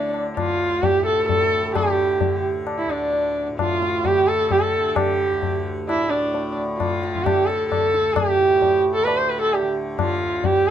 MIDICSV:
0, 0, Header, 1, 4, 480
1, 0, Start_track
1, 0, Tempo, 458365
1, 1829, Time_signature, 7, 2, 24, 8
1, 11210, End_track
2, 0, Start_track
2, 0, Title_t, "Sarangi"
2, 0, Program_c, 0, 110
2, 0, Note_on_c, 0, 62, 73
2, 148, Note_off_c, 0, 62, 0
2, 395, Note_on_c, 0, 65, 76
2, 876, Note_on_c, 0, 67, 85
2, 892, Note_off_c, 0, 65, 0
2, 1106, Note_off_c, 0, 67, 0
2, 1112, Note_on_c, 0, 69, 85
2, 1334, Note_off_c, 0, 69, 0
2, 1346, Note_on_c, 0, 69, 92
2, 1796, Note_off_c, 0, 69, 0
2, 1838, Note_on_c, 0, 67, 75
2, 2515, Note_off_c, 0, 67, 0
2, 2913, Note_on_c, 0, 64, 67
2, 3041, Note_on_c, 0, 62, 65
2, 3057, Note_off_c, 0, 64, 0
2, 3640, Note_off_c, 0, 62, 0
2, 3760, Note_on_c, 0, 65, 82
2, 4249, Note_on_c, 0, 67, 90
2, 4265, Note_off_c, 0, 65, 0
2, 4478, Note_on_c, 0, 69, 91
2, 4494, Note_off_c, 0, 67, 0
2, 4719, Note_off_c, 0, 69, 0
2, 4729, Note_on_c, 0, 69, 90
2, 5115, Note_off_c, 0, 69, 0
2, 5115, Note_on_c, 0, 69, 56
2, 5192, Note_on_c, 0, 67, 83
2, 5208, Note_off_c, 0, 69, 0
2, 5916, Note_off_c, 0, 67, 0
2, 6161, Note_on_c, 0, 64, 89
2, 6385, Note_on_c, 0, 62, 77
2, 6401, Note_off_c, 0, 64, 0
2, 6872, Note_off_c, 0, 62, 0
2, 7111, Note_on_c, 0, 65, 70
2, 7582, Note_on_c, 0, 67, 79
2, 7597, Note_off_c, 0, 65, 0
2, 7817, Note_on_c, 0, 69, 71
2, 7833, Note_off_c, 0, 67, 0
2, 8046, Note_off_c, 0, 69, 0
2, 8052, Note_on_c, 0, 69, 82
2, 8522, Note_on_c, 0, 67, 88
2, 8538, Note_off_c, 0, 69, 0
2, 9254, Note_off_c, 0, 67, 0
2, 9364, Note_on_c, 0, 69, 84
2, 9467, Note_on_c, 0, 71, 81
2, 9483, Note_off_c, 0, 69, 0
2, 9599, Note_on_c, 0, 72, 78
2, 9615, Note_off_c, 0, 71, 0
2, 9734, Note_on_c, 0, 71, 75
2, 9750, Note_off_c, 0, 72, 0
2, 9850, Note_off_c, 0, 71, 0
2, 9856, Note_on_c, 0, 69, 82
2, 9985, Note_on_c, 0, 67, 69
2, 10001, Note_off_c, 0, 69, 0
2, 10105, Note_off_c, 0, 67, 0
2, 10471, Note_on_c, 0, 65, 75
2, 10944, Note_on_c, 0, 67, 85
2, 10959, Note_off_c, 0, 65, 0
2, 11196, Note_off_c, 0, 67, 0
2, 11210, End_track
3, 0, Start_track
3, 0, Title_t, "Tanpura"
3, 0, Program_c, 1, 104
3, 0, Note_on_c, 1, 38, 57
3, 0, Note_on_c, 1, 45, 54
3, 0, Note_on_c, 1, 50, 55
3, 382, Note_off_c, 1, 38, 0
3, 386, Note_on_c, 1, 38, 52
3, 1033, Note_off_c, 1, 45, 0
3, 1033, Note_on_c, 1, 45, 48
3, 1693, Note_off_c, 1, 50, 0
3, 1693, Note_on_c, 1, 50, 54
3, 2329, Note_off_c, 1, 50, 0
3, 2329, Note_on_c, 1, 50, 60
3, 2987, Note_off_c, 1, 38, 0
3, 2991, Note_on_c, 1, 38, 63
3, 3657, Note_off_c, 1, 45, 0
3, 3661, Note_on_c, 1, 45, 50
3, 4293, Note_off_c, 1, 50, 0
3, 4293, Note_on_c, 1, 50, 57
3, 4918, Note_off_c, 1, 50, 0
3, 4918, Note_on_c, 1, 50, 59
3, 5556, Note_off_c, 1, 38, 0
3, 5560, Note_on_c, 1, 38, 57
3, 6232, Note_off_c, 1, 45, 0
3, 6236, Note_on_c, 1, 45, 63
3, 6868, Note_off_c, 1, 50, 0
3, 6868, Note_on_c, 1, 50, 54
3, 7510, Note_off_c, 1, 50, 0
3, 7510, Note_on_c, 1, 50, 56
3, 8128, Note_off_c, 1, 38, 0
3, 8133, Note_on_c, 1, 38, 47
3, 8775, Note_off_c, 1, 45, 0
3, 8779, Note_on_c, 1, 45, 52
3, 9418, Note_off_c, 1, 50, 0
3, 9418, Note_on_c, 1, 50, 53
3, 10074, Note_off_c, 1, 50, 0
3, 10074, Note_on_c, 1, 50, 59
3, 10718, Note_off_c, 1, 38, 0
3, 10722, Note_on_c, 1, 38, 55
3, 11210, Note_off_c, 1, 38, 0
3, 11210, Note_off_c, 1, 45, 0
3, 11210, Note_off_c, 1, 50, 0
3, 11210, End_track
4, 0, Start_track
4, 0, Title_t, "Tabla"
4, 147, Note_on_c, 9, 60, 50
4, 252, Note_off_c, 9, 60, 0
4, 390, Note_on_c, 9, 60, 70
4, 390, Note_on_c, 9, 64, 57
4, 495, Note_off_c, 9, 60, 0
4, 495, Note_off_c, 9, 64, 0
4, 869, Note_on_c, 9, 63, 76
4, 869, Note_on_c, 9, 64, 67
4, 974, Note_off_c, 9, 63, 0
4, 974, Note_off_c, 9, 64, 0
4, 1354, Note_on_c, 9, 63, 63
4, 1354, Note_on_c, 9, 64, 55
4, 1459, Note_off_c, 9, 63, 0
4, 1459, Note_off_c, 9, 64, 0
4, 1837, Note_on_c, 9, 60, 78
4, 1837, Note_on_c, 9, 64, 71
4, 1942, Note_off_c, 9, 60, 0
4, 1942, Note_off_c, 9, 64, 0
4, 2312, Note_on_c, 9, 63, 64
4, 2312, Note_on_c, 9, 64, 61
4, 2417, Note_off_c, 9, 63, 0
4, 2417, Note_off_c, 9, 64, 0
4, 2793, Note_on_c, 9, 60, 68
4, 2897, Note_off_c, 9, 60, 0
4, 3037, Note_on_c, 9, 60, 51
4, 3141, Note_off_c, 9, 60, 0
4, 3279, Note_on_c, 9, 63, 63
4, 3384, Note_off_c, 9, 63, 0
4, 3760, Note_on_c, 9, 60, 72
4, 3760, Note_on_c, 9, 64, 59
4, 3865, Note_off_c, 9, 60, 0
4, 3865, Note_off_c, 9, 64, 0
4, 4004, Note_on_c, 9, 62, 55
4, 4109, Note_off_c, 9, 62, 0
4, 4238, Note_on_c, 9, 63, 70
4, 4238, Note_on_c, 9, 64, 62
4, 4343, Note_off_c, 9, 63, 0
4, 4343, Note_off_c, 9, 64, 0
4, 4719, Note_on_c, 9, 63, 61
4, 4719, Note_on_c, 9, 64, 53
4, 4824, Note_off_c, 9, 63, 0
4, 4824, Note_off_c, 9, 64, 0
4, 5196, Note_on_c, 9, 60, 88
4, 5196, Note_on_c, 9, 64, 77
4, 5301, Note_off_c, 9, 60, 0
4, 5301, Note_off_c, 9, 64, 0
4, 5682, Note_on_c, 9, 63, 64
4, 5682, Note_on_c, 9, 64, 60
4, 5787, Note_off_c, 9, 63, 0
4, 5787, Note_off_c, 9, 64, 0
4, 6170, Note_on_c, 9, 60, 73
4, 6275, Note_off_c, 9, 60, 0
4, 6646, Note_on_c, 9, 63, 70
4, 6750, Note_off_c, 9, 63, 0
4, 7123, Note_on_c, 9, 60, 70
4, 7123, Note_on_c, 9, 64, 59
4, 7227, Note_off_c, 9, 60, 0
4, 7227, Note_off_c, 9, 64, 0
4, 7365, Note_on_c, 9, 62, 57
4, 7470, Note_off_c, 9, 62, 0
4, 7488, Note_on_c, 9, 64, 49
4, 7593, Note_off_c, 9, 64, 0
4, 7606, Note_on_c, 9, 60, 79
4, 7606, Note_on_c, 9, 64, 68
4, 7711, Note_off_c, 9, 60, 0
4, 7711, Note_off_c, 9, 64, 0
4, 7850, Note_on_c, 9, 62, 51
4, 7954, Note_off_c, 9, 62, 0
4, 8081, Note_on_c, 9, 60, 60
4, 8081, Note_on_c, 9, 64, 52
4, 8186, Note_off_c, 9, 60, 0
4, 8186, Note_off_c, 9, 64, 0
4, 8318, Note_on_c, 9, 62, 56
4, 8423, Note_off_c, 9, 62, 0
4, 8547, Note_on_c, 9, 60, 87
4, 8547, Note_on_c, 9, 64, 75
4, 8652, Note_off_c, 9, 60, 0
4, 8652, Note_off_c, 9, 64, 0
4, 9026, Note_on_c, 9, 63, 68
4, 9026, Note_on_c, 9, 64, 52
4, 9131, Note_off_c, 9, 63, 0
4, 9131, Note_off_c, 9, 64, 0
4, 9503, Note_on_c, 9, 60, 69
4, 9608, Note_off_c, 9, 60, 0
4, 9984, Note_on_c, 9, 63, 72
4, 10089, Note_off_c, 9, 63, 0
4, 10459, Note_on_c, 9, 60, 69
4, 10459, Note_on_c, 9, 64, 58
4, 10564, Note_off_c, 9, 60, 0
4, 10564, Note_off_c, 9, 64, 0
4, 10931, Note_on_c, 9, 63, 76
4, 10931, Note_on_c, 9, 64, 71
4, 11036, Note_off_c, 9, 63, 0
4, 11036, Note_off_c, 9, 64, 0
4, 11210, End_track
0, 0, End_of_file